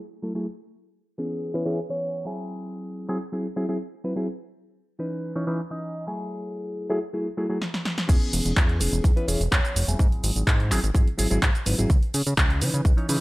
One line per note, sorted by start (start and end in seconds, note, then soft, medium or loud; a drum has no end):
0.23 0.31 F#3 medium
0.23 0.31 A3 medium
0.23 0.31 E4 medium
0.23 0.32 A4 medium
0.35 0.45 F#3 medium
0.35 0.45 A3 medium
0.35 0.46 E4 medium
0.35 0.46 G#4 medium
1.18 1.51 E3 medium
1.18 1.52 B3 medium
1.18 1.52 C#4 medium
1.18 1.52 G#4 medium
1.54 1.63 E3 medium
1.54 1.63 B3 medium
1.54 1.63 C#4 medium
1.54 1.63 B4 medium
1.65 1.79 E3 medium
1.65 1.79 B3 medium
1.65 1.79 C#4 medium
1.65 1.79 G#4 medium
1.89 2.23 E3 medium
1.89 2.23 B3 medium
1.89 2.23 C#4 medium
1.89 2.23 C#5 medium
2.25 3.06 F#3 medium
2.25 3.06 C4 medium
2.25 3.06 E4 medium
2.25 3.07 G#4 medium
3.08 3.17 F#3 loud
3.08 3.17 C4 medium
3.08 3.17 E4 medium
3.08 3.17 G#4 loud
3.32 3.46 F#3 medium
3.32 3.46 C4 medium
3.32 3.46 E4 medium
3.32 3.46 G#4 medium
3.56 3.65 F#3 medium
3.56 3.65 C4 medium
3.56 3.65 E4 medium
3.56 3.65 G#4 loud
3.69 3.76 F#3 medium
3.69 3.77 C4 medium
3.69 3.77 E4 medium
3.69 3.77 G#4 medium
4.04 4.12 F#3 medium
4.04 4.12 C4 medium
4.04 4.13 E4 medium
4.04 4.13 B4 medium
4.16 4.26 F#3 medium
4.16 4.27 C4 medium
4.16 4.27 E4 medium
4.16 4.27 G#4 medium
4.99 5.32 E3 medium
4.99 5.33 C#4 medium
4.99 5.33 D#4 medium
4.99 5.33 B4 medium
5.35 5.44 E3 medium
5.35 5.44 C#4 medium
5.35 5.44 D#4 medium
5.35 5.45 C#5 medium
5.47 5.60 E3 medium
5.47 5.60 C#4 medium
5.47 5.60 D#4 medium
5.47 5.60 B4 medium
5.70 6.04 E3 medium
5.70 6.04 C#4 medium
5.70 6.04 D#4 medium
5.70 6.04 D#5 medium
6.06 6.87 F#3 medium
6.06 6.87 A3 medium
6.06 6.87 E4 medium
6.06 6.88 G#4 medium
6.89 6.98 F#3 loud
6.89 6.98 A3 medium
6.89 6.98 E4 medium
6.89 6.98 G#4 loud
7.13 7.27 F#3 medium
7.13 7.27 A3 medium
7.13 7.27 E4 medium
7.13 7.27 G#4 medium
7.37 7.46 F#3 medium
7.37 7.46 A3 medium
7.37 7.46 E4 medium
7.37 7.46 G#4 loud
7.49 7.57 F#3 medium
7.49 7.57 A3 medium
7.49 7.58 E4 medium
7.49 7.58 G#4 medium
7.62 snare medium
7.74 snare medium
7.85 snare medium
7.98 snare medium
8.08 8.17 E2 loud
8.08 8.75 E3 medium
8.08 8.76 B3 medium
8.08 8.76 C#4 medium
8.08 8.76 G#4 loud
8.08 kick loud
8.08 closed hi-hat medium
8.08 crash loud
8.08 cabasa soft
8.22 closed hi-hat soft
8.33 8.41 E1 medium
8.33 open hi-hat loud
8.33 cabasa medium
8.45 8.53 E1 medium
8.45 closed hi-hat medium
8.45 cabasa soft
8.57 8.82 E2 loud
8.57 kick loud
8.57 clap loud
8.57 closed hi-hat medium
8.57 cabasa soft
8.69 closed hi-hat soft
8.80 8.89 E1 loud
8.80 9.13 E3 medium
8.80 9.14 B3 medium
8.80 9.14 C#4 medium
8.80 9.14 G#4 medium
8.80 open hi-hat loud
8.80 cabasa medium
8.93 9.00 E1 medium
8.93 closed hi-hat medium
8.93 cabasa soft
9.04 9.12 E2 medium
9.04 kick loud
9.04 closed hi-hat medium
9.04 cabasa soft
9.16 9.25 E3 medium
9.16 9.25 B3 medium
9.16 9.25 C#4 medium
9.16 9.25 B4 loud
9.16 closed hi-hat soft
9.28 9.36 E1 medium
9.28 9.41 E3 medium
9.28 9.41 B3 medium
9.28 9.41 C#4 medium
9.28 9.41 G#4 medium
9.28 open hi-hat loud
9.28 cabasa medium
9.40 9.48 E1 loud
9.40 closed hi-hat medium
9.40 cabasa soft
9.51 9.60 E2 medium
9.51 9.85 E3 medium
9.51 9.85 B3 medium
9.51 9.85 C#4 medium
9.51 9.85 C#5 medium
9.51 kick loud
9.51 clap loud
9.51 closed hi-hat medium
9.51 cabasa soft
9.65 closed hi-hat soft
9.65 cabasa soft
9.76 9.84 E1 loud
9.76 open hi-hat loud
9.76 cabasa medium
9.87 9.96 E1 medium
9.87 10.68 F#3 medium
9.87 10.68 C4 medium
9.87 10.68 E4 medium
9.87 10.68 G#4 medium
9.87 closed hi-hat medium
9.87 cabasa soft
9.99 10.08 G#2 loud
9.99 kick loud
9.99 closed hi-hat medium
9.99 cabasa soft
10.12 10.21 G#1 soft
10.12 closed hi-hat soft
10.24 10.32 G#1 medium
10.24 open hi-hat loud
10.24 cabasa medium
10.36 10.43 G#1 medium
10.36 closed hi-hat medium
10.36 cabasa soft
10.47 10.73 G#2 loud
10.47 kick loud
10.47 clap loud
10.47 closed hi-hat medium
10.47 cabasa soft
10.60 closed hi-hat soft
10.71 10.79 G#1 loud
10.71 10.79 F#3 loud
10.71 10.79 C4 medium
10.71 10.79 E4 medium
10.71 10.79 G#4 loud
10.71 clap soft
10.71 open hi-hat loud
10.71 cabasa medium
10.84 10.91 G#1 medium
10.84 closed hi-hat soft
10.84 cabasa soft
10.94 11.03 G#2 medium
10.94 11.08 F#3 medium
10.94 11.08 C4 medium
10.94 11.08 E4 medium
10.94 11.08 G#4 medium
10.94 kick loud
10.94 closed hi-hat medium
10.94 cabasa soft
11.07 11.17 G#1 soft
11.07 closed hi-hat soft
11.18 11.27 G#1 medium
11.18 11.26 F#3 loud
11.18 11.27 C4 medium
11.18 11.27 E4 medium
11.18 11.27 G#4 loud
11.18 open hi-hat loud
11.18 cabasa medium
11.30 11.39 G#1 loud
11.30 11.38 F#3 medium
11.30 11.38 C4 medium
11.30 11.38 E4 medium
11.30 11.39 G#4 medium
11.30 closed hi-hat medium
11.30 cabasa soft
11.42 11.50 G#2 medium
11.42 kick loud
11.42 clap loud
11.42 closed hi-hat medium
11.42 cabasa soft
11.55 closed hi-hat soft
11.55 cabasa soft
11.66 11.75 G#1 loud
11.66 11.74 F#3 medium
11.66 11.74 C4 medium
11.66 11.74 E4 medium
11.66 11.75 B4 medium
11.66 open hi-hat loud
11.66 cabasa medium
11.78 11.86 G#1 medium
11.78 11.88 F#3 medium
11.78 11.88 C4 medium
11.78 11.89 E4 medium
11.78 11.89 G#4 medium
11.78 closed hi-hat soft
11.78 cabasa soft
11.90 11.98 C#2 loud
11.90 kick loud
11.90 closed hi-hat medium
11.90 cabasa soft
12.03 closed hi-hat soft
12.14 12.22 C#3 medium
12.14 open hi-hat loud
12.14 cabasa medium
12.27 12.34 C#3 medium
12.27 closed hi-hat medium
12.27 cabasa soft
12.37 12.63 C#2 loud
12.37 kick loud
12.37 clap loud
12.37 closed hi-hat medium
12.37 cabasa soft
12.50 closed hi-hat soft
12.61 12.70 C#3 loud
12.61 12.94 E3 medium
12.61 12.95 C#4 medium
12.61 12.95 D#4 medium
12.61 12.95 B4 medium
12.61 open hi-hat loud
12.61 cabasa medium
12.74 12.81 C#3 medium
12.74 closed hi-hat soft
12.74 cabasa soft
12.85 12.93 C#2 medium
12.85 kick loud
12.85 closed hi-hat medium
12.85 cabasa soft
12.97 13.06 E3 medium
12.97 13.06 C#4 medium
12.97 13.06 D#4 medium
12.97 13.06 C#5 loud
12.97 closed hi-hat soft
13.08 13.17 C#3 medium
13.08 13.21 E3 medium
13.08 13.21 C#4 medium
13.08 13.21 D#4 medium
13.08 13.21 B4 medium
13.08 open hi-hat loud
13.08 cabasa medium